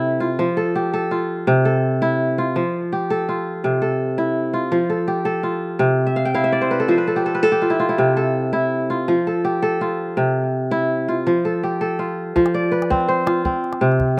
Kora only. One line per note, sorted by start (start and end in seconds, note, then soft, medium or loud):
0.00 0.44 C3 medium
0.00 0.26 E4 medium
0.00 0.56 A4 medium
0.20 1.11 F4 medium
0.39 1.53 F3 medium
0.57 0.93 A4 medium
0.76 2.17 G4 medium
0.94 1.65 A4 medium
1.11 2.08 F4 medium
1.47 2.61 C3 medium
1.65 2.97 A4 medium
2.02 2.44 E4 medium
2.38 3.28 F4 medium
2.56 3.69 F3 medium
2.93 4.34 G4 medium
3.10 3.81 A4 medium
3.29 4.24 F4 medium
3.64 4.78 C3 medium
3.82 4.89 A4 medium
4.18 4.60 E4 medium
4.54 5.43 F4 medium
4.72 5.86 F3 medium
4.90 5.25 A4 soft
5.08 6.49 G4 medium
5.25 6.57 A4 medium
5.43 6.13 F4 medium
5.79 6.95 C3 medium
6.07 6.40 E5 medium
6.16 6.34 F5 medium
6.25 7.19 G5 medium
6.34 6.94 E4 medium
6.34 7.34 F5 medium
6.44 6.94 E5 medium
6.52 7.63 D5 medium
6.61 6.88 C5 medium
6.71 6.95 B4 medium
6.80 7.07 A4 medium
6.88 8.04 F3 medium
6.88 7.41 C5 medium
6.98 7.34 B4 medium
7.07 7.25 A4 medium
7.16 7.51 G4 medium
7.26 7.42 A4 medium
7.35 8.04 B4 medium
7.43 8.16 A4 medium
7.52 8.93 G4 medium
7.62 7.79 F4 medium
7.70 7.89 E4 medium
7.80 8.59 F4 medium
7.89 8.52 E4 medium
7.98 9.13 C3 medium
8.17 9.27 A4 medium
8.53 8.96 E4 medium
8.90 9.81 F4 medium
9.08 10.22 F3 medium
9.27 9.62 A4 medium
9.45 10.86 G4 medium
9.62 10.94 A4 medium
9.81 10.77 F4 medium
10.17 11.32 C3 medium
10.71 11.14 E4 medium
11.08 11.99 F4 medium
11.27 12.35 F3 medium
11.45 11.80 A4 medium
11.63 13.05 G4 medium
11.81 13.13 A4 medium
11.99 13.26 F4 soft
12.36 13.51 F3 medium
12.54 13.65 D5 medium
12.72 13.51 B4 medium
12.90 13.45 C4 medium
13.08 14.20 C5 medium
13.26 14.20 F4 medium
13.45 14.20 C4 medium
13.81 14.20 C3 medium